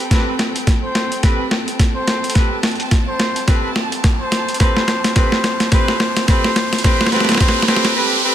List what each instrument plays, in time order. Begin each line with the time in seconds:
Already playing: string section C4 A4 G5 B5
0.10 horn section C4 G4 A4 B4, kick, snare, closed hi-hat, riser
0.39 snare, closed hi-hat
0.56 closed hi-hat
0.67 kick, snare, closed hi-hat
0.83 trumpet C5
0.95 snare, closed hi-hat
1.12 closed hi-hat
1.22 horn section C4 G4 A4 B4, string section A5, kick, snare, closed hi-hat
1.51 snare
1.68 closed hi-hat
1.79 kick, snare, closed hi-hat
1.96 trumpet C5
2.08 snare, closed hi-hat
2.24 closed hi-hat
2.30 closed hi-hat
2.35 horn section C4 G4 A4 B4, kick, snare, closed hi-hat
2.63 snare, closed hi-hat
2.67 closed hi-hat
2.71 closed hi-hat
2.75 closed hi-hat
2.80 closed hi-hat
2.83 closed hi-hat
2.86 closed hi-hat
2.89 snare, closed hi-hat
2.91 kick, closed hi-hat
3.08 trumpet C5
3.20 snare, closed hi-hat
3.36 closed hi-hat
3.47 horn section C4 G4 A4 B4, kick, snare, closed hi-hat
3.76 snare
3.92 closed hi-hat
4.04 kick, snare, closed hi-hat
4.21 trumpet C5
4.32 snare, closed hi-hat
4.49 closed hi-hat
4.54 closed hi-hat
4.60 horn section C4 G4 A4 B4, trumpet C5, kick, snare, closed hi-hat
4.77 snare
4.88 snare, closed hi-hat
5.04 snare, closed hi-hat
5.15 horn section C4 G4 A4 B4, trumpet C5, kick, snare, closed hi-hat
5.32 snare
5.44 snare, closed hi-hat
5.60 snare, closed hi-hat
5.72 horn section C4 G4 A4 B4, trumpet C5, kick, snare, closed hi-hat
5.88 snare
6.00 snare
6.17 snare, closed hi-hat
6.28 horn section C4 G4 A4 B4, trumpet C5, kick, snare, closed hi-hat
6.44 snare
6.56 snare, closed hi-hat
6.73 snare, closed hi-hat
6.78 closed hi-hat
6.84 horn section C4 G4 A4 B4, trumpet C5, kick, snare, closed hi-hat
7.01 snare
7.06 snare
7.12 horn section C4 G4 A4 B4, trumpet C5, snare, closed hi-hat
7.16 snare
7.20 snare
7.25 snare
7.29 snare, closed hi-hat
7.32 snare
7.35 snare
7.37 horn section C4 G4 A4 B4, trumpet C5, kick, snare
7.41 snare, closed hi-hat
7.48 snare
7.62 snare
7.68 horn section C4 G4 A4 B4, trumpet C5, snare, closed hi-hat
7.76 snare
7.85 snare, closed hi-hat
7.96 horn section C4 G4 A4 B4
8.24 horn section C4 G4 A4 B4